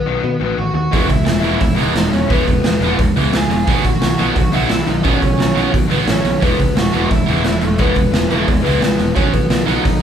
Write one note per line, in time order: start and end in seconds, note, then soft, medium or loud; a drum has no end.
0.00 0.54 B3 medium
0.00 0.64 B4 loud
0.06 0.19 B1 medium
0.06 0.22 B2 medium
0.06 0.22 D#3 medium
0.06 0.23 F#3 medium
0.24 0.39 B2 medium
0.24 0.36 B2 medium
0.24 0.39 D#3 medium
0.40 0.53 A1 medium
0.40 0.56 B2 medium
0.40 0.57 D#3 medium
0.40 0.57 F#3 loud
0.58 0.70 A1 medium
0.58 0.73 B2 medium
0.58 0.73 D#3 medium
0.58 0.74 F#4 medium
0.58 0.73 F#5 medium
0.74 0.87 D#2 medium
0.74 0.90 B2 medium
0.74 0.90 D#3 medium
0.74 1.07 F#4 medium
0.74 1.10 F#5 medium
0.91 1.06 E1 medium
0.91 1.07 E2 medium
0.91 1.07 B2 loud
0.91 1.07 E3 loud
0.91 1.09 E3 loud
0.91 1.08 G#3 loud
0.91 1.08 B3 loud
0.91 kick loud
0.91 open hi-hat medium
1.08 1.22 C#2 medium
1.08 1.24 E2 medium
1.08 1.24 B2 medium
1.08 1.23 E3 medium
1.08 1.24 G#3 medium
1.08 1.58 E4 medium
1.08 1.59 E5 medium
1.08 kick medium
1.08 open hi-hat medium
1.24 1.39 E1 medium
1.24 1.41 E2 medium
1.24 1.41 B2 medium
1.24 1.39 E3 medium
1.24 1.40 G#3 medium
1.24 snare loud
1.24 open hi-hat medium
1.40 1.56 E1 medium
1.40 1.59 E2 medium
1.40 1.60 B2 medium
1.40 1.56 E3 medium
1.40 1.60 E3 medium
1.40 1.57 G#3 medium
1.40 1.59 B3 medium
1.40 open hi-hat medium
1.57 1.75 E2 medium
1.57 1.74 E3 medium
1.57 1.74 G#3 medium
1.57 1.76 E5 loud
1.57 kick loud
1.57 open hi-hat medium
1.62 1.74 E1 medium
1.62 1.76 B2 medium
1.62 1.77 E4 medium
1.75 1.90 E1 medium
1.75 1.93 E2 medium
1.75 1.94 B2 medium
1.75 1.92 E3 loud
1.75 1.94 E3 medium
1.75 1.92 G#3 medium
1.75 1.93 B3 loud
1.75 2.10 D#4 medium
1.75 2.09 D#5 loud
1.75 open hi-hat medium
1.93 2.08 E1 medium
1.93 2.11 E2 medium
1.93 2.11 B2 medium
1.93 2.08 E3 medium
1.93 2.10 G#3 medium
1.93 snare loud
1.93 open hi-hat medium
2.10 2.24 E1 medium
2.10 2.28 E2 medium
2.10 2.28 B2 medium
2.10 2.26 E3 medium
2.10 2.27 G#3 medium
2.10 2.28 C#4 medium
2.10 2.31 C#5 medium
2.10 open hi-hat medium
2.27 2.43 E1 medium
2.27 2.46 E2 loud
2.27 2.43 E3 medium
2.27 2.43 G#3 medium
2.27 2.45 B3 loud
2.27 2.99 B4 medium
2.27 kick loud
2.27 open hi-hat medium
2.32 2.47 B2 loud
2.32 2.47 E3 loud
2.32 2.95 B3 medium
2.44 2.59 E3 medium
2.44 2.60 G#3 medium
2.44 kick medium
2.48 2.60 E1 medium
2.48 2.63 E2 medium
2.48 2.63 B2 medium
2.48 open hi-hat medium
2.60 2.76 E1 medium
2.60 2.79 E2 medium
2.60 2.77 E3 medium
2.60 2.78 G#3 medium
2.60 snare loud
2.60 open hi-hat medium
2.65 2.80 B2 medium
2.80 2.93 E1 medium
2.80 2.98 E2 medium
2.80 2.96 E3 medium
2.80 2.96 G#3 medium
2.80 2.97 B3 loud
2.80 open hi-hat medium
2.84 2.99 B2 medium
2.84 2.99 E3 medium
2.97 3.11 E2 loud
2.97 3.14 E2 medium
2.97 3.14 B2 medium
2.97 3.13 E3 medium
2.97 3.13 G#3 medium
2.97 kick loud
2.97 open hi-hat medium
3.16 3.28 C#2 medium
3.16 3.32 E2 medium
3.16 3.32 B2 medium
3.16 3.32 E3 medium
3.16 3.32 E3 loud
3.16 3.32 G#3 medium
3.16 3.32 B3 loud
3.16 open hi-hat medium
3.33 3.45 C#2 medium
3.33 3.48 E2 medium
3.33 3.49 B2 medium
3.33 3.48 E3 medium
3.33 3.48 G#3 medium
3.33 3.49 G#4 medium
3.33 3.52 G#5 loud
3.33 snare loud
3.33 open hi-hat medium
3.50 3.62 E1 medium
3.50 3.65 E2 medium
3.50 3.65 B2 medium
3.50 3.65 E3 medium
3.50 3.65 G#3 medium
3.50 3.82 G#4 medium
3.50 3.83 G#5 loud
3.50 open hi-hat medium
3.67 3.80 B1 medium
3.67 3.83 B2 medium
3.67 3.82 B2 loud
3.67 3.83 D#3 loud
3.67 3.83 F#3 loud
3.67 3.83 F#3 medium
3.67 3.84 B3 loud
3.67 kick loud
3.67 open hi-hat medium
3.82 3.97 A1 medium
3.82 3.99 B2 medium
3.82 4.00 D#3 medium
3.82 3.99 F#3 medium
3.82 4.31 F#4 medium
3.82 kick loud
3.82 open hi-hat medium
3.87 4.33 F#5 loud
4.01 4.14 B1 medium
4.01 4.16 B2 medium
4.01 4.17 B2 medium
4.01 4.16 D#3 medium
4.01 4.17 F#3 medium
4.01 snare loud
4.01 open hi-hat medium
4.18 4.32 B1 medium
4.18 4.34 B2 medium
4.18 4.34 D#3 medium
4.18 4.34 F#3 medium
4.18 4.35 F#3 medium
4.18 4.35 B3 medium
4.18 open hi-hat medium
4.36 4.48 B1 medium
4.36 4.51 B2 medium
4.36 4.51 D#3 medium
4.36 4.51 F#3 medium
4.36 4.52 F#4 medium
4.36 4.53 F#5 loud
4.36 kick loud
4.36 open hi-hat medium
4.52 4.66 B1 medium
4.52 4.68 B2 medium
4.52 4.69 B2 medium
4.52 4.68 D#3 loud
4.52 4.69 F#3 medium
4.52 4.69 F#3 loud
4.52 4.69 B3 loud
4.52 4.84 E4 medium
4.52 4.88 E5 loud
4.52 open hi-hat medium
4.69 4.83 B1 medium
4.69 4.85 B2 medium
4.69 4.86 D#3 medium
4.69 4.86 F#3 medium
4.69 snare loud
4.69 open hi-hat medium
4.87 5.00 B1 medium
4.87 5.02 B2 medium
4.87 5.02 D#3 medium
4.87 5.03 F#3 medium
4.87 5.03 D#4 medium
4.87 5.04 D#5 medium
4.87 open hi-hat medium
5.03 5.17 B1 medium
5.03 5.20 B2 medium
5.03 5.19 B2 loud
5.03 5.19 D#3 loud
5.03 5.20 F#3 medium
5.03 5.20 F#3 loud
5.03 5.20 B3 loud
5.03 5.69 C#4 medium
5.03 5.69 C#5 loud
5.03 kick loud
5.03 open hi-hat medium
5.20 5.34 B1 medium
5.20 5.36 B2 medium
5.20 5.37 B2 medium
5.20 5.36 D#3 medium
5.20 5.37 F#3 medium
5.20 kick medium
5.20 open hi-hat medium
5.38 5.51 B1 medium
5.38 5.53 B2 medium
5.38 5.54 B2 medium
5.38 5.54 D#3 medium
5.38 5.54 F#3 medium
5.38 snare loud
5.38 open hi-hat medium
5.54 5.68 B1 medium
5.54 5.70 B2 medium
5.54 5.71 B2 medium
5.54 5.72 D#3 medium
5.54 5.71 F#3 medium
5.54 5.72 F#3 medium
5.54 5.71 B3 loud
5.54 open hi-hat medium
5.71 5.87 B2 medium
5.71 5.86 B2 medium
5.71 5.87 D#3 medium
5.71 5.88 F#3 medium
5.71 kick loud
5.71 open hi-hat medium
5.88 6.05 B2 medium
5.88 6.06 B2 medium
5.88 6.05 D#3 medium
5.88 6.05 F#3 loud
5.88 6.06 F#3 medium
5.88 5.95 B3 medium
5.88 6.06 B3 medium
5.88 5.96 B4 medium
5.88 open hi-hat medium
5.93 6.04 A1 medium
6.06 6.20 A1 medium
6.06 6.22 B2 medium
6.06 6.23 D#3 medium
6.06 6.23 F#3 medium
6.06 6.40 C#4 medium
6.06 6.40 C#5 medium
6.06 snare loud
6.06 open hi-hat medium
6.24 6.37 B1 medium
6.24 6.39 B2 medium
6.24 6.40 B2 medium
6.24 6.40 D#3 medium
6.24 6.40 F#3 medium
6.24 open hi-hat medium
6.40 6.54 E1 loud
6.40 6.57 E2 medium
6.40 6.57 B2 medium
6.40 6.58 E3 loud
6.40 6.57 E3 medium
6.40 6.58 G#3 loud
6.40 6.73 B3 medium
6.40 6.58 B3 loud
6.40 6.77 B4 loud
6.40 kick loud
6.40 open hi-hat medium
6.58 6.72 C#2 medium
6.58 6.74 E2 medium
6.58 6.73 B2 medium
6.58 6.74 E3 medium
6.58 6.74 G#3 medium
6.58 kick medium
6.58 open hi-hat medium
6.75 6.88 E1 medium
6.75 6.91 E2 medium
6.75 6.92 B2 medium
6.75 6.91 E3 medium
6.75 6.91 G#3 medium
6.75 7.08 F#4 medium
6.75 7.09 F#5 medium
6.75 snare loud
6.75 open hi-hat medium
6.92 7.06 E1 medium
6.92 7.09 E2 medium
6.92 7.08 B2 medium
6.92 7.09 E3 medium
6.92 7.09 E3 loud
6.92 7.09 G#3 medium
6.92 7.09 B3 medium
6.92 open hi-hat medium
7.10 7.23 E1 medium
7.10 7.25 E2 medium
7.10 7.25 B2 medium
7.10 7.25 E3 medium
7.10 7.25 G#3 medium
7.10 7.58 E4 medium
7.10 7.63 E5 loud
7.10 kick loud
7.10 open hi-hat medium
7.26 7.40 E1 medium
7.26 7.43 E2 medium
7.26 7.43 B2 medium
7.26 7.43 E3 loud
7.26 7.44 E3 medium
7.26 7.44 G#3 medium
7.26 7.45 B3 medium
7.26 open hi-hat medium
7.44 7.57 E1 medium
7.44 7.60 E2 medium
7.44 7.60 B2 medium
7.44 7.60 E3 medium
7.44 7.60 G#3 medium
7.44 snare loud
7.44 open hi-hat medium
7.61 7.74 E1 medium
7.61 7.77 E2 medium
7.61 7.77 B2 medium
7.61 7.77 E3 medium
7.61 7.78 G#3 medium
7.61 7.78 A3 medium
7.61 7.80 A4 medium
7.61 open hi-hat medium
7.78 7.92 E1 medium
7.78 7.95 E2 medium
7.78 7.95 B2 medium
7.78 7.93 E3 loud
7.78 7.95 E3 loud
7.78 7.93 G#3 loud
7.78 7.95 B3 loud
7.78 8.28 B3 medium
7.78 8.28 B4 loud
7.78 kick loud
7.78 open hi-hat medium
7.94 8.08 E1 medium
7.94 8.12 E2 medium
7.94 8.12 B2 medium
7.94 8.10 E3 medium
7.94 8.11 G#3 medium
7.94 kick loud
7.94 open hi-hat medium
8.12 8.26 E1 medium
8.12 8.29 E2 medium
8.12 8.29 B2 medium
8.12 8.28 E3 medium
8.12 8.28 G#3 medium
8.12 snare loud
8.12 open hi-hat medium
8.29 8.42 E1 medium
8.29 8.46 E2 medium
8.29 8.47 B2 medium
8.29 8.45 E3 medium
8.29 8.47 E3 loud
8.29 8.61 G#3 medium
8.29 8.45 G#3 medium
8.29 8.47 B3 medium
8.29 8.65 G#4 medium
8.29 open hi-hat medium
8.46 8.63 E2 medium
8.46 8.60 E2 medium
8.46 8.63 B2 medium
8.46 8.61 E3 medium
8.46 8.61 G#3 medium
8.46 kick loud
8.46 open hi-hat medium
8.62 8.77 C#2 medium
8.62 8.81 E2 medium
8.62 8.81 B2 medium
8.62 8.78 E3 medium
8.62 8.81 E3 loud
8.62 8.79 G#3 medium
8.62 8.80 B3 loud
8.62 9.11 B3 medium
8.62 9.11 B4 medium
8.66 open hi-hat medium
8.79 8.94 C#2 medium
8.79 8.97 E2 medium
8.79 8.98 B2 medium
8.79 8.96 E3 medium
8.79 8.96 G#3 medium
8.79 snare loud
8.79 open hi-hat medium
8.97 9.11 E1 medium
8.97 9.14 E2 medium
8.97 9.14 B2 medium
8.97 9.13 E3 medium
8.97 9.13 G#3 medium
8.97 open hi-hat medium
9.15 9.29 B1 medium
9.15 9.31 B2 loud
9.15 9.31 B2 medium
9.15 9.31 D#3 loud
9.15 9.32 F#3 loud
9.15 9.32 B3 medium
9.15 9.32 C#4 medium
9.15 9.31 C#5 medium
9.15 kick loud
9.15 open hi-hat medium
9.31 9.46 A1 medium
9.31 9.48 B2 medium
9.31 9.48 D#3 medium
9.31 9.48 F#3 medium
9.31 9.64 B3 medium
9.31 9.65 B4 medium
9.31 kick medium
9.31 open hi-hat medium
9.50 9.62 B1 medium
9.50 9.65 B2 medium
9.50 9.64 B2 medium
9.50 9.66 D#3 medium
9.50 9.65 F#3 medium
9.50 snare loud
9.50 open hi-hat medium
9.65 9.79 B1 medium
9.65 9.82 B2 medium
9.65 9.83 B2 medium
9.65 9.83 D#3 medium
9.65 9.83 F#3 loud
9.65 9.83 F#3 medium
9.65 9.83 B3 loud
9.65 10.02 D#4 medium
9.65 10.02 D#5 medium
9.65 open hi-hat medium
9.83 9.98 B1 loud
9.83 9.99 B2 medium
9.83 10.00 B2 medium
9.83 10.00 D#3 medium
9.83 9.99 F#3 medium
9.83 kick loud
9.83 open hi-hat medium